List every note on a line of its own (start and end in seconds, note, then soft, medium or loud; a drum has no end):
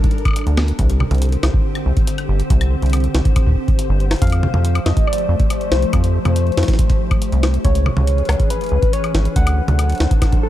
0.00 0.75 G3 medium
0.00 0.75 D4 medium
0.00 0.75 A4 medium
0.00 0.75 A#4 medium
0.00 kick loud
0.00 closed hi-hat soft
0.11 closed hi-hat soft
0.18 closed hi-hat soft
0.25 kick loud
0.25 closed hi-hat soft
0.25 high woodblock medium
0.28 high woodblock medium
0.31 high woodblock medium
0.33 closed hi-hat medium
0.33 high woodblock soft
0.36 high woodblock soft
0.39 high woodblock soft
0.44 0.73 D2 medium
0.44 closed hi-hat soft
0.44 high woodblock soft
0.57 snare loud
0.57 high woodblock medium
0.68 closed hi-hat soft
0.79 1.05 C2 loud
0.79 4.18 D3 medium
0.79 4.18 C4 medium
0.79 7.61 G4 medium
0.79 7.61 C5 medium
0.79 kick loud
0.79 closed hi-hat medium
0.90 closed hi-hat medium
1.00 mid tom medium
1.00 high woodblock medium
1.11 1.37 C2 medium
1.11 closed hi-hat soft
1.11 mid tom medium
1.15 closed hi-hat soft
1.18 closed hi-hat soft
1.22 closed hi-hat medium
1.25 closed hi-hat soft
1.29 closed hi-hat soft
1.32 closed hi-hat soft
1.43 1.50 C2 loud
1.43 snare loud
1.43 high woodblock medium
1.54 kick loud
1.75 closed hi-hat soft
1.75 high woodblock medium
1.86 1.93 C2 medium
1.97 kick loud
1.97 closed hi-hat soft
2.07 closed hi-hat medium
2.18 closed hi-hat soft
2.18 high woodblock medium
2.29 2.43 G1 medium
2.40 closed hi-hat soft
2.50 2.76 C2 loud
2.50 kick loud
2.50 closed hi-hat medium
2.61 closed hi-hat medium
2.61 high woodblock medium
2.82 3.08 C2 medium
2.82 closed hi-hat soft
2.86 closed hi-hat soft
2.90 closed hi-hat soft
2.93 closed hi-hat medium
2.93 high woodblock medium
2.97 closed hi-hat soft
3.00 closed hi-hat soft
3.04 closed hi-hat soft
3.15 3.21 C2 medium
3.15 snare loud
3.25 kick loud
3.25 closed hi-hat medium
3.36 kick loud
3.36 closed hi-hat medium
3.36 high woodblock medium
3.47 kick loud
3.49 kick medium
3.52 kick medium
3.55 kick medium
3.68 kick loud
3.68 closed hi-hat soft
3.79 closed hi-hat medium
3.90 4.16 G1 medium
4.00 closed hi-hat soft
4.11 snare loud
4.11 closed hi-hat soft
4.11 high woodblock medium
4.14 closed hi-hat soft
4.16 closed hi-hat soft
4.19 4.48 F2 loud
4.19 7.61 F3 medium
4.19 7.61 A3 medium
4.19 4.87 F5 loud
4.19 kick loud
4.19 closed hi-hat soft
4.22 closed hi-hat medium
4.24 closed hi-hat soft
4.27 closed hi-hat soft
4.30 closed hi-hat soft
4.32 closed hi-hat soft
4.32 high woodblock medium
4.43 mid tom medium
4.54 4.80 F2 medium
4.54 mid tom loud
4.65 closed hi-hat medium
4.75 closed hi-hat soft
4.75 high woodblock medium
4.86 4.93 F2 loud
4.86 5.09 D#5 medium
4.86 snare loud
4.97 kick loud
4.97 closed hi-hat medium
5.07 5.73 D5 loud
5.07 high woodblock medium
5.13 closed hi-hat medium
5.18 closed hi-hat soft
5.29 5.36 F2 medium
5.40 kick loud
5.40 closed hi-hat soft
5.50 closed hi-hat medium
5.50 high woodblock soft
5.61 closed hi-hat soft
5.72 5.86 C2 medium
5.72 7.43 C5 loud
5.72 snare loud
5.82 closed hi-hat soft
5.93 6.19 F2 loud
5.93 kick loud
5.93 closed hi-hat medium
5.93 high woodblock medium
6.04 closed hi-hat medium
6.25 6.51 F2 medium
6.25 closed hi-hat soft
6.25 mid tom loud
6.25 high woodblock medium
6.36 closed hi-hat medium
6.47 closed hi-hat soft
6.52 closed hi-hat soft
6.57 6.64 F2 loud
6.57 snare loud
6.57 closed hi-hat soft
6.63 snare medium
6.63 closed hi-hat soft
6.68 kick loud
6.68 snare medium
6.68 closed hi-hat soft
6.74 snare medium
6.79 kick loud
6.79 closed hi-hat medium
6.90 kick loud
6.90 closed hi-hat soft
7.11 kick loud
7.11 closed hi-hat soft
7.11 high woodblock medium
7.22 closed hi-hat medium
7.32 7.59 C2 medium
7.32 closed hi-hat soft
7.43 snare loud
7.43 high woodblock medium
7.54 closed hi-hat soft
7.65 7.91 C#2 loud
7.65 9.34 E3 medium
7.65 9.34 C#4 medium
7.65 9.34 G#4 medium
7.65 9.34 B4 medium
7.65 8.52 C#5 loud
7.65 kick loud
7.65 closed hi-hat medium
7.75 closed hi-hat medium
7.86 mid tom medium
7.86 high woodblock medium
7.97 8.23 C#2 medium
7.97 mid tom loud
8.07 closed hi-hat medium
8.18 closed hi-hat soft
8.25 8.36 C#2 loud
8.25 snare loud
8.25 closed hi-hat soft
8.25 high woodblock medium
8.32 closed hi-hat soft
8.40 kick loud
8.40 closed hi-hat medium
8.50 8.95 B4 loud
8.50 closed hi-hat medium
8.61 closed hi-hat soft
8.64 closed hi-hat soft
8.66 closed hi-hat soft
8.69 8.79 C#2 medium
8.69 closed hi-hat soft
8.82 kick loud
8.82 closed hi-hat soft
8.93 9.35 C#5 loud
8.93 closed hi-hat medium
9.04 closed hi-hat soft
9.04 high woodblock medium
9.15 9.28 G#1 medium
9.15 snare loud
9.25 closed hi-hat soft
9.36 9.62 D2 loud
9.36 10.49 F#3 medium
9.36 10.49 D4 medium
9.36 10.49 A4 medium
9.36 10.49 C5 medium
9.36 10.39 F#5 loud
9.36 kick loud
9.36 closed hi-hat medium
9.47 closed hi-hat medium
9.47 high woodblock medium
9.68 9.94 D2 medium
9.68 closed hi-hat soft
9.68 mid tom loud
9.79 closed hi-hat medium
9.79 high woodblock medium
9.90 closed hi-hat soft
9.92 closed hi-hat soft
9.95 closed hi-hat soft
9.98 10.07 D2 loud
9.98 snare loud
9.98 closed hi-hat soft
10.11 kick loud
10.11 closed hi-hat medium
10.22 kick loud
10.22 snare medium
10.22 closed hi-hat medium
10.22 high woodblock medium
10.32 kick loud
10.32 closed hi-hat soft
10.43 10.49 A4 loud